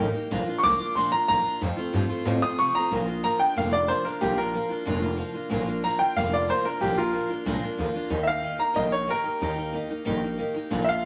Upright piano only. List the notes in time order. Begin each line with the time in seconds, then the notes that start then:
0.58 C#6
0.63 D6
0.95 C6
1.12 A#5
1.28 A#5
2.42 D#6
2.59 C#6
2.75 A#5
3.24 A#5
3.39 G5
3.58 F5
3.73 D5
3.88 C5
4.05 A#4
4.21 G4
4.38 A#4
5.84 A#5
5.99 G5
6.17 F5
6.33 D5
6.50 C5
6.65 A#4
6.81 G4
6.98 F4 A#4
8.23 E5
8.27 F5
8.59 A#5
8.76 D#5
8.92 C#5
9.11 A#4
10.84 E5
10.89 F5